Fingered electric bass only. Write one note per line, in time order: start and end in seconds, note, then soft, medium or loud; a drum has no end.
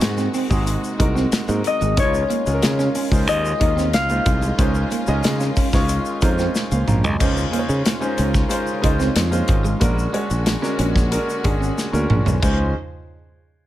0.02 0.27 G#2 loud
0.51 0.75 G#1 medium
1.00 1.24 C2 medium
1.33 muted fingered electric bass stroke soft
1.49 1.61 G#2 loud
1.82 1.99 G#1 medium
1.98 2.22 C#2 loud
2.47 2.59 C#2 medium
2.63 2.88 C#3 loud
3.11 3.27 C#2 medium
3.27 3.52 D#2 medium
3.61 3.94 D#2 medium
3.94 4.18 C#2 medium
4.26 4.51 C2 loud
4.58 4.83 C#2 loud
5.08 5.20 C#2 medium
5.25 5.49 C#3 medium
5.73 5.98 C#2 medium
6.22 6.47 F2 medium
6.72 6.84 C#2 loud
6.88 7.04 A#1 loud
7.04 7.16 C2 medium
7.20 7.45 C#2 loud
7.69 7.82 C#3 medium
8.19 8.43 C#2 medium
8.84 9.08 C#2 medium
9.16 9.41 F2 loud
9.49 9.73 G#1 loud
9.81 10.06 A#1 loud
10.31 10.55 A#1 medium
10.79 11.16 A#1 medium
11.45 11.69 G#1 medium
11.93 12.06 D2 medium
12.10 12.22 A#1 medium
12.26 12.39 B1 medium
12.43 12.73 C#2 loud